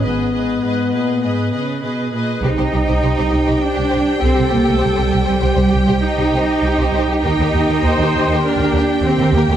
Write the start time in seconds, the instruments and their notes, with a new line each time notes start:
0.02 double bass section G#1, cello section G#2, french horn section B3, viola section G#4 B4, violin section D#5
0.33 viola section G#4 B4, violin section D#5
0.63 cello section G#2, viola section G#4 B4, violin section D#5
0.92 cello section A#2, viola section G#4 B4, violin section D#5
1.22 cello section G#2, viola section G#4 B4, violin section D#5
1.52 cello section C#3, viola section G#4 B4, violin section D#5
1.82 cello section B2, viola section G#4 B4, violin section D#5
2.13 cello section A#2, viola section G#4 B4, violin section D#5
2.43 double bass section C2, cello section D#4, french horn section G4 C5, violin section G4 C5 G5
2.57 double bass section C2, violin section G4 C5
2.73 double bass section C2, violin section G4
2.88 double bass section C2, violin section G4 C5
3.03 double bass section C2, violin section G4 C5
3.18 double bass section C2, violin section G4 C5
3.30 double bass section C2, violin section G4
3.46 double bass section C2, violin section G4 C5
3.61 cello section D4, viola section G4
3.75 double bass section C2, violin section G4
3.90 violin section G4 C5
3.94 double bass section C2
4.20 double bass section C2, cello section C4, violin section G4, viola section A4
4.33 violin section G4 C5
4.39 double bass section C2
4.49 violin section G4 C5
4.53 double bass section C2, cello section A#3
4.63 violin section G4
4.69 double bass section C2, cello section A3
4.79 double bass section C2, cello section G3, violin section G4 C5
4.96 double bass section C2, violin section G4 C5
5.11 double bass section C2, violin section G4
5.26 violin section G4 C5
5.30 double bass section C2
5.41 double bass section C2, violin section G4 C5, viola section G4
5.56 double bass section C2, violin section G4 C5
5.71 double bass section C2, violin section G4
5.87 double bass section C2, violin section G4 C5
6.03 cello section D#4
6.19 double bass section C2, violin section G4
6.34 double bass section C2, violin section G4 C5
6.62 double bass section C2, violin section G4
6.78 double bass section C2, violin section G4 C5
6.92 double bass section C2, violin section G4 C5
7.08 double bass section C2, violin section G4
7.23 double bass section D#2, french horn section A#3 G4, cello section D#4, violin section G4 A#4 G5
7.38 double bass section D#2, violin section G4 A#4
7.53 double bass section D#2, violin section G4
7.68 double bass section D#2
7.72 violin section G4 A#4
7.84 double bass section D#2, viola section C5
7.88 violin section G4 A#4
7.99 double bass section D#2, violin section G4
8.03 violin section A#4
8.13 double bass section D#2, violin section G4
8.28 double bass section D#2
8.33 violin section G4 A#4
8.44 cello section D4, viola section A#4
8.58 double bass section D#2
8.63 violin section G4
8.73 double bass section D#2, viola section G4
8.77 violin section G4 A#4
9.03 double bass section D#2, cello section C4, viola section G4
9.08 violin section G4
9.18 double bass section D#2, violin section G4 A#4
9.33 double bass section D#2, cello section A#3, violin section G4 A#4
9.48 double bass section D#2, cello section A3, violin section G4